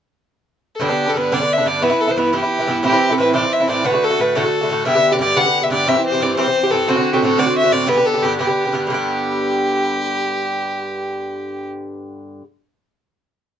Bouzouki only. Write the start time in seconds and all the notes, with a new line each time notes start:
0.80 G2 D3 B3 D4
0.89 D3 B3 D4
1.06 D3 B3 D4
1.14 G2 D3 B3 D4
1.32 G2 D3 B3 D4
1.40 D3 B3 D4
1.58 D3 B3 D4
1.65 G2 D3 B3 D4
1.81 G2 E3 B3 E4
1.90 E3 B3 E4
2.07 E3 B3 E4
2.16 G2 E3 B3 E4
2.33 G2 E3 B3 E4
2.42 E3 B3 E4
2.59 E3 B3 E4
2.67 G2 E3 B3 E4
2.83 A2 E3 C4 E4
2.92 E3 C4 E4
3.10 E3 C4 E4
3.18 A2 E3 C4 E4
3.33 A2 E3 C4 E4
3.43 E3 C4 E4
3.60 E3 C4 E4
3.67 A2 E3 C4 E4
3.84 A2 D3 A3 F#4
3.92 D3 A3 F#4
4.10 D3 A3 F#4
4.19 A2 D3 A3 F#4
4.35 A2 D3 A3 F#4
4.44 D3 A3 F#4
4.61 D3 A3 F#4
4.70 A2 D3 A3 F#4
4.85 G2 D3 B3 G4
4.95 D3 B3 G4
5.12 D3 B3 G4
5.19 G2 D3 B3 G4
5.35 G2 D3 B3 G4
5.45 D3 B3 G4
5.62 D3 B3 G4
5.70 G2 D3 B3 G4
5.86 G2 E3 C4 G4
5.95 E3 C4 G4
6.12 E3 C4 G4
6.20 G2 E3 C4 G4
6.37 G2 E3 C4 G4
6.46 E3 C4 G4
6.63 E3 C4 G4
6.71 G2 E3 C4 G4
6.88 A2 D3 C4 F#4
6.96 D3 C4 F#4
7.13 D3 C4 F#4
7.22 A2 D3 C4 F#4
7.37 A2 D3 C4 F#4
7.46 D3 C4 F#4
7.63 D3 C4 F#4
7.71 A2 D3 C4 F#4
7.87 G2 D3 B3 G4
7.97 D3 B3 G4
8.14 D3 B3 G4
8.23 G2 D3 B3 G4
8.39 G2 D3 B3 G4
8.47 D3 B3 G4
8.65 D3 B3 G4
8.72 G2 D3 B3 G4
8.87 G2 D3
8.92 B3 G4